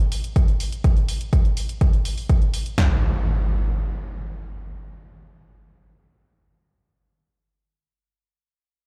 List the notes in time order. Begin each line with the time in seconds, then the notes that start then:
0.12 open hi-hat
0.24 closed hi-hat
0.36 kick, closed hi-hat
0.48 closed hi-hat
0.60 open hi-hat
0.72 closed hi-hat
0.84 kick, closed hi-hat
0.97 closed hi-hat
1.09 open hi-hat
1.21 closed hi-hat
1.33 kick, closed hi-hat
1.45 closed hi-hat
1.57 open hi-hat
1.69 closed hi-hat
1.81 kick, closed hi-hat
1.93 closed hi-hat
2.05 open hi-hat
2.18 open hi-hat
2.29 kick, closed hi-hat
2.42 closed hi-hat
2.54 open hi-hat
2.66 closed hi-hat
2.78 snare, floor tom, impact